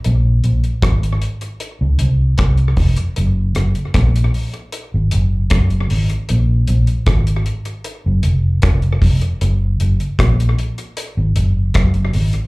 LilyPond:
<<
  \new Staff \with { instrumentName = "Fingered electric bass" } { \clef bass \time 4/4 \key bes \minor \tempo 4 = 77 bes,,8 bes,,16 r16 aes,,8 r8. des,16 c,8 c,8 f,,16 r16 | ges,,8 ges,,16 r16 bes,,8 r8. aes,,16 ges,,8 ges,,8 aes,,16 r16 | bes,,8 bes,,16 r16 aes,,8 r8. ges,,16 f,,8 f,,8 f,,16 r16 | ges,,8 ges,,16 r16 bes,,8 r8. aes,,16 ges,,8 ges,,8 aes,,16 r16 | }
  \new DrumStaff \with { instrumentName = "Drums" } \drummode { \time 4/4 hh8 hh16 hh16 <hh bd ss>16 hh16 hh16 hh16 hh8 hh8 <hh bd ss>16 hh16 <hho bd>16 hh16 | hh8 <hh ss>16 hh16 <hh bd ss>16 hh16 hho16 hh16 hh8 hh8 <hh bd ss>16 hh16 hho16 hh16 | hh8 hh16 hh16 <hh bd ss>16 hh16 hh16 hh16 hh8 hh8 <hh bd ss>16 hh16 <hho bd>16 hh16 | hh8 hh16 hh16 <hh bd ss>16 hh16 hh16 hh16 hh8 hh8 <hh bd ss>16 hh16 hho16 hh16 | }
>>